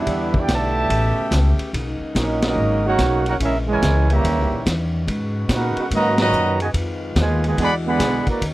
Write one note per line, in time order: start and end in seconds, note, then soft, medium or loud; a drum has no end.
0.00 0.35 G3 medium
0.00 0.35 B3 medium
0.00 0.36 D4 loud
0.00 0.35 E4 medium
0.00 0.36 G4 medium
0.00 0.36 B4 medium
0.00 0.36 E5 loud
0.06 0.47 E2 medium
0.06 0.89 D3 medium
0.06 0.89 G3 medium
0.06 1.72 B3 medium
0.06 0.89 E4 medium
0.06 kick soft
0.06 ride medium
0.34 0.50 B3 medium
0.34 0.50 D4 medium
0.34 0.50 G4 medium
0.34 kick medium
0.39 0.51 E4 medium
0.39 0.51 B4 medium
0.39 0.51 D5 medium
0.39 0.51 G5 loud
0.48 0.89 B1 loud
0.48 1.56 B2 medium
0.48 0.88 D3 medium
0.48 1.56 A3 medium
0.48 kick soft
0.48 snare medium
0.48 hi-hat pedal medium
0.48 ride medium
0.53 1.57 G4 loud
0.53 0.90 D5 medium
0.53 1.57 E5 loud
0.53 1.57 A5 loud
0.90 1.15 A1 medium
0.90 1.73 C#3 medium
0.90 1.73 A3 medium
0.90 1.73 G4 loud
0.90 kick soft
0.90 ride medium
1.31 1.57 C#2 loud
1.31 kick soft
1.31 snare medium
1.31 hi-hat pedal medium
1.31 ride medium
1.59 muted upright bass stroke soft
1.59 ride medium
1.73 1.99 B1 medium
1.73 4.22 C#3 medium
1.73 3.24 G#3 medium
1.73 4.21 A#3 medium
1.73 3.24 D#4 medium
1.73 kick soft
1.73 ride medium
2.00 muted upright bass stroke soft
2.15 2.55 A#1 loud
2.15 2.42 F#3 medium
2.15 2.42 A#3 medium
2.15 2.42 C#4 medium
2.15 2.42 D#4 medium
2.15 2.42 F#4 medium
2.15 2.42 A#4 medium
2.15 2.42 D#5 medium
2.15 kick soft
2.15 snare medium
2.15 hi-hat pedal medium
2.15 ride medium
2.42 2.82 F#3 medium
2.42 2.82 A#3 medium
2.42 2.82 D#4 medium
2.42 snare medium
2.42 ride medium
2.46 2.84 C#4 medium
2.46 2.83 F#4 medium
2.46 2.83 A#4 medium
2.46 2.83 D#5 medium
2.56 2.97 G#1 medium
2.85 3.24 A#3 medium
2.85 3.24 D#4 medium
2.85 3.25 D#4 medium
2.85 3.24 F#4 medium
2.85 3.25 A#4 medium
2.85 3.25 C#5 medium
2.85 3.25 F#5 loud
2.98 3.39 B1 loud
2.98 kick soft
2.98 snare medium
2.98 hi-hat pedal medium
2.98 ride medium
3.26 3.33 A#3 medium
3.26 3.34 D#4 medium
3.26 3.34 F#4 medium
3.26 3.35 A#4 medium
3.26 3.35 C#5 medium
3.26 3.34 F#5 medium
3.26 ride medium
3.40 3.81 A#1 medium
3.40 5.06 E3 loud
3.40 4.23 G#3 medium
3.40 3.53 G#3 medium
3.40 3.53 C#4 medium
3.40 3.53 E4 medium
3.40 3.55 G#4 medium
3.40 3.55 A#4 medium
3.40 3.55 E5 loud
3.40 kick soft
3.40 ride medium
3.44 3.56 C#4 medium
3.67 4.07 C#3 medium
3.67 4.07 E3 medium
3.67 4.06 G#3 medium
3.67 4.08 C#5 medium
3.71 4.09 E4 medium
3.71 4.08 A#4 medium
3.71 4.09 G#5 loud
3.82 4.23 C#2 loud
3.82 kick soft
3.82 snare medium
3.82 hi-hat pedal medium
3.82 ride medium
4.09 4.62 C#3 medium
4.09 4.62 G3 medium
4.09 4.62 A#3 medium
4.09 4.63 G4 medium
4.09 4.63 C#5 medium
4.09 4.63 E5 medium
4.09 4.63 A#5 loud
4.09 ride medium
4.24 4.38 D#2 medium
4.24 5.07 D#3 medium
4.24 5.06 G3 medium
4.24 5.06 C#4 medium
4.24 kick soft
4.24 ride medium
4.38 4.51 C#2 medium
4.51 4.64 A#1 medium
4.66 5.06 E2 loud
4.66 kick soft
4.66 snare medium
4.66 hi-hat pedal medium
4.66 ride medium
5.06 5.48 G#2 medium
5.06 6.72 C#3 medium
5.06 6.72 G#3 medium
5.06 6.72 F#4 medium
5.06 7.54 B4 medium
5.06 kick soft
5.06 ride medium
5.49 5.74 A#2 loud
5.49 5.76 B3 medium
5.49 5.76 D#4 medium
5.49 5.76 F#4 medium
5.49 kick soft
5.49 snare medium
5.49 hi-hat pedal medium
5.49 ride medium
5.54 5.77 D#4 medium
5.54 5.77 A#4 medium
5.54 5.77 B4 medium
5.54 5.77 F#5 medium
5.76 5.84 B3 medium
5.76 5.84 D#4 medium
5.76 5.84 F#4 medium
5.76 muted upright bass stroke soft
5.76 ride medium
5.80 5.86 D#4 medium
5.80 5.86 A#4 medium
5.80 5.86 B4 medium
5.80 5.86 F#5 medium
5.91 6.31 G#2 loud
5.91 6.17 D#3 medium
5.91 6.16 F#3 loud
5.91 6.17 A#3 medium
5.91 6.18 F#4 loud
5.91 6.18 B4 loud
5.91 6.18 D#5 loud
5.91 6.18 A#5 loud
5.91 kick soft
5.91 ride medium
6.18 6.57 A#2 loud
6.18 6.57 D#3 loud
6.18 6.57 F#3 loud
6.18 6.58 F#4 medium
6.18 6.58 B4 loud
6.18 6.58 D#5 loud
6.18 6.58 A#5 loud
6.18 snare loud
6.18 ride medium
6.32 6.73 F#2 loud
6.32 hi-hat pedal medium
6.60 6.67 B2 medium
6.60 6.67 D#3 medium
6.60 6.67 G#3 medium
6.60 6.68 F#4 medium
6.60 6.68 B4 medium
6.60 6.68 D#5 medium
6.60 6.68 G#5 medium
6.60 ride medium
6.73 7.14 F2 medium
6.73 7.57 D#3 medium
6.73 8.39 G#3 medium
6.73 7.56 F4 medium
6.73 kick soft
6.73 ride medium
7.16 7.56 D#2 loud
7.16 7.43 B2 medium
7.16 7.42 D#3 medium
7.16 7.42 G#3 medium
7.16 kick soft
7.16 snare medium
7.16 hi-hat pedal medium
7.16 ride medium
7.20 7.44 F4 medium
7.20 7.44 B4 medium
7.20 7.44 D#5 medium
7.20 7.43 G#5 loud
7.44 7.58 B2 medium
7.44 7.58 D#3 medium
7.44 7.58 G#3 medium
7.44 7.59 F4 medium
7.44 7.59 B4 medium
7.44 7.59 D#5 medium
7.44 7.59 G#5 medium
7.44 ride medium
7.57 7.98 E2 medium
7.57 7.71 D3 medium
7.57 8.40 E3 medium
7.57 7.71 G#3 medium
7.57 7.71 B3 medium
7.57 8.40 D4 medium
7.57 8.40 F#4 medium
7.57 kick soft
7.57 ride medium
7.62 7.73 G#4 loud
7.62 7.73 D5 loud
7.62 7.73 F#5 loud
7.62 7.73 B5 loud
7.85 8.24 D3 medium
7.85 8.24 G#3 loud
7.85 8.24 B3 loud
7.85 8.25 G#4 medium
7.85 8.25 D5 loud
7.85 8.25 F#5 loud
7.85 8.25 B5 loud
7.99 8.25 B1 loud
7.99 kick soft
7.99 snare medium
7.99 hi-hat pedal medium
7.99 ride medium
8.27 8.42 A#3 medium
8.27 8.43 F#4 medium
8.27 8.42 B4 medium
8.27 8.43 D5 medium
8.27 8.43 A#5 loud
8.27 muted upright bass stroke soft
8.27 kick medium
8.27 ride medium
8.41 8.54 D#2 medium
8.41 8.54 D#3 medium
8.41 8.54 C#4 medium
8.41 8.54 D#4 loud
8.41 8.54 F#4 medium
8.41 kick soft
8.41 ride medium